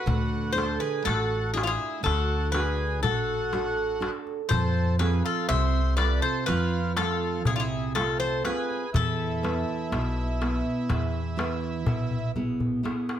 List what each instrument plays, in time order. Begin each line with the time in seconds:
Already playing: accordion F#4, bouzouki B4
0.06 upright bass D2, nylon-string guitar D3, darbuka dum
0.53 nylon-string guitar D4 F#4 A4, bouzouki C5
0.58 accordion A4, darbuka tek
0.80 accordion G#4, bouzouki B4, darbuka tek
1.05 upright bass A1, nylon-string guitar A3, accordion F#4, bouzouki A4, darbuka tek
1.32 darbuka tek
1.54 nylon-string guitar D4 F#4, accordion E4, bouzouki G#4, darbuka tek
1.63 accordion C4, bouzouki F4 G#4
1.69 accordion E4
2.03 upright bass D2, nylon-string guitar D3, accordion F#4, bouzouki A4, darbuka tek
2.52 nylon-string guitar D4 F#4, accordion G#4, bouzouki B4, darbuka tek
3.03 upright bass A1, nylon-string guitar A3, accordion F#4, bouzouki A4, darbuka dum
3.53 nylon-string guitar D4 F#4 A4, darbuka tek
3.78 darbuka tek
4.00 nylon-string guitar D4 F#4 A4, darbuka tek
4.27 darbuka tek
4.49 upright bass F2, nylon-string guitar F3, accordion A4, bouzouki C5, darbuka dum
4.99 nylon-string guitar C4 F4 A4, accordion G#4, bouzouki B4, darbuka tek
5.24 accordion F4, bouzouki A4, darbuka tek
5.48 upright bass C2, nylon-string guitar C3, accordion C5, bouzouki E5, darbuka tek
5.74 darbuka tek
5.96 nylon-string guitar C4 F4, accordion B4, bouzouki D5, darbuka tek
6.00 nylon-string guitar A4
6.20 accordion A4, bouzouki C5
6.46 upright bass F2, nylon-string guitar F3, accordion F4, bouzouki B4, darbuka tek
6.97 nylon-string guitar A3 C4, accordion F4, bouzouki A4, darbuka tek
7.45 upright bass C2, nylon-string guitar C3, accordion F4, bouzouki G#4, darbuka dum
7.55 accordion D4, bouzouki F4
7.60 accordion E4, bouzouki G#4
7.95 nylon-string guitar A3 C4 F4, accordion F4, bouzouki A4, darbuka tek
8.20 accordion A4, bouzouki C5, darbuka tek
8.45 nylon-string guitar C4 F4, accordion G#4, bouzouki B4, darbuka tek
8.70 darbuka tek
8.93 upright bass E2, nylon-string guitar E3, accordion E4, bouzouki A4, darbuka dum
9.20 darbuka tek
9.43 nylon-string guitar B3 E4 B4, darbuka tek
9.68 darbuka tek
9.92 upright bass B1, nylon-string guitar B2, darbuka tek
10.41 nylon-string guitar B3 E4 B4, darbuka tek
10.89 upright bass E2, nylon-string guitar E3, darbuka tek, darbuka dum
11.14 darbuka tek
11.37 nylon-string guitar B3 E4 B4, darbuka tek
11.64 darbuka tek
11.86 upright bass B1, nylon-string guitar B2, darbuka dum
12.11 darbuka dum
12.36 nylon-string guitar B3 E4 G#4, darbuka dum
12.60 darbuka dum
12.83 nylon-string guitar B3 E4 G#4, darbuka tek
13.09 darbuka tek